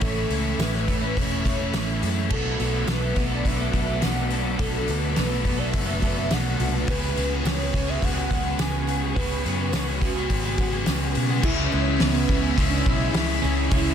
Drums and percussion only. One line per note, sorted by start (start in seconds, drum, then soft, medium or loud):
0.01 kick loud
0.01 open hi-hat medium
0.30 open hi-hat medium
0.59 snare loud
0.59 open hi-hat medium
0.59 tambourine medium
0.74 snare soft
0.88 kick medium
0.88 open hi-hat medium
1.17 kick medium
1.17 open hi-hat medium
1.45 kick medium
1.45 open hi-hat medium
1.73 snare loud
1.73 open hi-hat medium
1.73 tambourine medium
2.03 open hi-hat medium
2.30 kick loud
2.30 crash loud
2.60 open hi-hat soft
2.87 snare loud
2.87 open hi-hat medium
2.87 tambourine medium
3.16 kick medium
3.16 snare soft
3.16 open hi-hat medium
3.45 kick medium
3.45 open hi-hat medium
3.73 kick medium
3.73 open hi-hat medium
4.02 snare loud
4.02 open hi-hat medium
4.02 tambourine medium
4.30 open hi-hat medium
4.59 kick loud
4.59 open hi-hat medium
4.88 open hi-hat medium
5.16 snare loud
5.16 open hi-hat medium
5.16 tambourine medium
5.45 kick medium
5.45 open hi-hat medium
5.73 kick medium
5.73 open hi-hat medium
6.02 kick medium
6.02 open hi-hat medium
6.31 snare loud
6.31 open hi-hat medium
6.31 tambourine medium
6.60 open hi-hat medium
6.88 kick loud
6.88 open hi-hat medium
7.17 open hi-hat medium
7.45 snare loud
7.45 open hi-hat medium
7.45 tambourine medium
7.74 kick medium
7.74 open hi-hat medium
8.02 kick medium
8.02 open hi-hat medium
8.31 kick medium
8.31 open hi-hat medium
8.59 snare loud
8.59 open hi-hat medium
8.59 tambourine medium
8.88 open hi-hat medium
9.16 kick loud
9.16 open hi-hat medium
9.46 open hi-hat soft
9.73 snare loud
9.73 open hi-hat medium
9.73 tambourine medium
10.02 kick medium
10.02 open hi-hat medium
10.30 kick medium
10.30 open hi-hat medium
10.58 kick loud
10.58 open hi-hat medium
10.86 snare loud
10.86 open hi-hat medium
10.86 tambourine loud
11.15 open hi-hat medium
11.43 kick loud
11.43 crash loud
12.00 snare loud
12.00 open hi-hat medium
12.29 kick loud
12.29 snare soft
12.58 kick medium
12.58 open hi-hat medium
12.86 kick loud
13.14 snare loud
13.14 open hi-hat medium
13.71 kick loud
13.71 open hi-hat medium